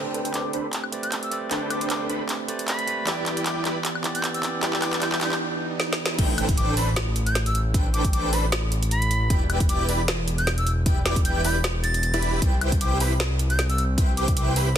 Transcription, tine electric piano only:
Already playing: A3 C4 G4 D5 B5
0.91 A3 G4 B4 C5 D5
1.30 A3 G4 B4 C5 D5
1.49 A3 C4 G4 B5
1.53 D5
2.47 A3 G4 B4 C5 D5
2.86 A3 G4 B4 C5 D5
3.05 E3 B3 G4
3.09 D5
4.03 E3 B3 G4 D5
4.42 E3 B3 G4 D5
4.61 E3 B3 G4 D5

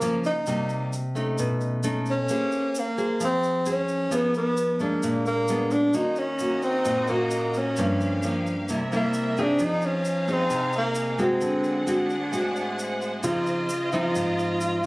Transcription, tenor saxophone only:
Already playing: A#3
0.26 D#4
2.10 C#4
2.79 A#3
3.24 C4
3.71 C#4
4.14 B3
4.37 B3
4.82 A#3
5.27 A#3
5.72 D4
5.95 D#4
6.19 C#4
6.63 C4
7.10 A#3
7.58 C#4
8.95 A#3
9.41 D4
9.64 D#4
9.86 C#4
10.32 C4
10.77 A#3
11.23 C4
13.24 F4
13.92 F4

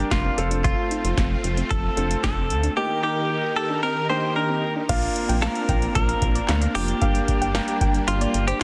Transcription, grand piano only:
Already playing: D4 G4 A#4
0.38 C4 F4 A4
1.97 C4 F4 A4
2.77 A#3 D#4 G4
4.10 A#3 D#4 G4
4.89 A#3 D4 F4
5.42 A#3 D4
6.75 A#3 D4 F4
7.02 A#3 D4 G4
7.55 A#3 D4 G4

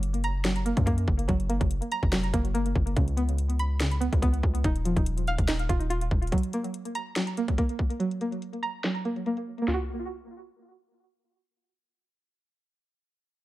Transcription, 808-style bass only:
Already playing: F#1
0.77 F#2
1.08 F#1
1.29 F#1
1.61 F#1
2.03 F1
2.34 F#1
2.75 F#1
2.97 C#2
4.13 C#2
4.43 C#2
4.64 D#1
4.96 D#1
5.38 D#1
5.69 D#1
6.11 D#1

